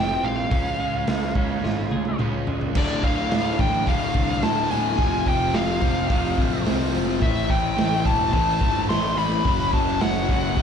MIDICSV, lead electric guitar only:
0, 0, Header, 1, 2, 480
1, 0, Start_track
1, 0, Key_signature, -1, "minor"
1, 0, Tempo, 558659
1, 447, Time_signature, 4, 2, 24, 8
1, 9125, End_track
2, 0, Start_track
2, 0, Title_t, "Lead electric guitar"
2, 0, Program_c, 0, 29
2, 0, Note_on_c, 0, 79, 119
2, 211, Note_on_c, 0, 77, 98
2, 217, Note_off_c, 0, 79, 0
2, 1856, Note_off_c, 0, 77, 0
2, 2385, Note_on_c, 0, 74, 87
2, 2613, Note_off_c, 0, 74, 0
2, 2616, Note_on_c, 0, 77, 82
2, 3094, Note_on_c, 0, 79, 98
2, 3106, Note_off_c, 0, 77, 0
2, 3331, Note_on_c, 0, 77, 94
2, 3337, Note_off_c, 0, 79, 0
2, 3808, Note_on_c, 0, 81, 112
2, 3822, Note_off_c, 0, 77, 0
2, 4030, Note_off_c, 0, 81, 0
2, 4049, Note_on_c, 0, 80, 108
2, 4534, Note_off_c, 0, 80, 0
2, 4537, Note_on_c, 0, 79, 95
2, 4767, Note_on_c, 0, 77, 80
2, 4777, Note_off_c, 0, 79, 0
2, 5689, Note_off_c, 0, 77, 0
2, 6209, Note_on_c, 0, 76, 97
2, 6444, Note_on_c, 0, 79, 99
2, 6452, Note_off_c, 0, 76, 0
2, 6922, Note_off_c, 0, 79, 0
2, 6926, Note_on_c, 0, 81, 91
2, 7148, Note_off_c, 0, 81, 0
2, 7158, Note_on_c, 0, 81, 111
2, 7606, Note_off_c, 0, 81, 0
2, 7641, Note_on_c, 0, 84, 116
2, 7885, Note_off_c, 0, 84, 0
2, 7889, Note_on_c, 0, 83, 111
2, 8332, Note_off_c, 0, 83, 0
2, 8367, Note_on_c, 0, 81, 85
2, 8606, Note_off_c, 0, 81, 0
2, 8610, Note_on_c, 0, 78, 85
2, 9125, Note_off_c, 0, 78, 0
2, 9125, End_track
0, 0, End_of_file